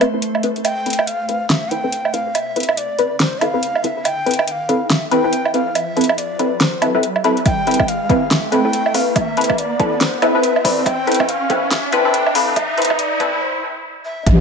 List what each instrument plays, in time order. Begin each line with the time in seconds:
Already playing: synth texture A3 C5, ney C5
0.01 synth stab C4 E4 A4 B4, closed hi-hat, low woodblock
0.14 synth stab C4 E4 A4 B4
0.22 closed hi-hat
0.35 low woodblock
0.43 synth stab C4 E4 A4 B4, closed hi-hat
0.56 closed hi-hat
0.64 ney G5, closed hi-hat, riser, low woodblock
0.86 synth stab C4 E4 A4 B4, closed hi-hat
0.90 closed hi-hat
0.93 closed hi-hat
0.99 low woodblock
1.07 ney F5, closed hi-hat
1.29 synth stab C4 E4 A4 B4, closed hi-hat
1.49 ney E5, snare, closed hi-hat
1.71 synth stab C4 E4 A4 B4, ney G5, closed hi-hat
1.84 synth stab C4 E4 A4 B4
1.92 closed hi-hat
2.05 low woodblock
2.13 synth stab C4 E4 A4 B4, ney F5, closed hi-hat
2.35 ney E5, closed hi-hat, low woodblock
2.56 synth stab C4 E4 A4 B4, closed hi-hat
2.60 closed hi-hat
2.63 closed hi-hat
2.69 low woodblock
2.77 ney D5, closed hi-hat
2.99 synth stab C4 E4 A4 B4, closed hi-hat
3.20 ney C5, snare, closed hi-hat
3.41 synth stab C4 E4 A4 B4, ney F5, closed hi-hat, low woodblock
3.54 synth stab C4 E4 A4 B4
3.63 closed hi-hat
3.75 low woodblock
3.83 synth stab C4 E4 A4 B4, ney E5, closed hi-hat
4.05 ney G5, closed hi-hat, low woodblock
4.26 synth stab C4 E4 A4 B4, closed hi-hat
4.31 closed hi-hat
4.34 closed hi-hat
4.39 low woodblock
4.48 ney G5, closed hi-hat
4.52 ney F5
4.69 synth stab C4 E4 A4 B4, closed hi-hat
4.90 ney E5, snare, closed hi-hat
5.11 synth stab C4 E4 A4 B4, ney G5, closed hi-hat
5.24 synth stab C4 E4 A4 B4
5.33 closed hi-hat
5.45 low woodblock
5.54 synth stab C4 E4 A4 B4, ney F5, closed hi-hat
5.75 ney E5, closed hi-hat, low woodblock
5.97 synth stab C4 E4 A4 B4, closed hi-hat
6.01 closed hi-hat
6.04 closed hi-hat
6.09 low woodblock
6.18 ney D5, closed hi-hat
6.39 synth stab C4 E4 A4 B4, closed hi-hat
6.61 ney C5, snare, closed hi-hat
6.82 synth stab C4 E4 A4 B4, closed hi-hat, low woodblock
6.95 synth stab C4 E4 A4 B4
7.03 closed hi-hat
7.16 low woodblock
7.24 synth stab C4 E4 A4 B4, ney E5, closed hi-hat
7.37 closed hi-hat
7.46 ney G5, kick, closed hi-hat, low woodblock
7.67 synth stab C4 E4 A4 B4, closed hi-hat
7.71 closed hi-hat
7.74 closed hi-hat
7.80 kick, low woodblock
7.88 ney F5, closed hi-hat
8.09 synth stab C4 E4 A4 B4, kick, closed hi-hat
8.31 ney E5, snare, closed hi-hat
8.52 synth stab C4 E4 A4 B4, ney G5, closed hi-hat
8.65 synth stab C4 E4 A4 B4
8.73 closed hi-hat
8.86 low woodblock
8.94 synth stab C4 E4 A4 B4, ney F5, open hi-hat
9.16 ney E5, kick, closed hi-hat, low woodblock
9.37 synth stab C4 E4 A4 B4, closed hi-hat
9.41 closed hi-hat
9.44 closed hi-hat
9.50 kick, low woodblock
9.58 ney D5, closed hi-hat
9.80 synth stab C4 E4 A4 B4, kick, closed hi-hat
10.01 ney C5, snare, closed hi-hat
10.22 synth stab C4 E4 A4 B4, ney E5, closed hi-hat, low woodblock
10.35 synth stab C4 E4 A4 B4
10.43 closed hi-hat
10.56 low woodblock
10.65 synth stab C4 E4 A4 B4, ney D5, kick, open hi-hat
10.86 ney G5, kick, closed hi-hat, low woodblock
11.07 synth stab C4 E4 A4 B4, closed hi-hat
11.12 closed hi-hat
11.14 closed hi-hat
11.20 kick, low woodblock
11.29 ney F5, closed hi-hat
11.50 synth stab C4 E4 A4 B4, kick, closed hi-hat
11.71 ney E5, snare, closed hi-hat
11.92 synth stab C4 E4 A4 B4, ney G5, closed hi-hat
12.05 synth stab C4 E4 A4 B4
12.14 closed hi-hat
12.26 low woodblock
12.35 synth stab C4 E4 A4 B4, ney F5, open hi-hat
12.56 ney E5, kick, closed hi-hat, low woodblock
12.78 synth stab C4 E4 A4 B4, closed hi-hat
12.82 closed hi-hat
12.85 closed hi-hat
12.90 kick, low woodblock
12.99 ney D5, closed hi-hat
13.20 synth stab C4 E4 A4 B4, kick, closed hi-hat
13.41 ney C5
14.05 ney E5
14.26 wobble bass A1, kick, closed hi-hat, impact, low woodblock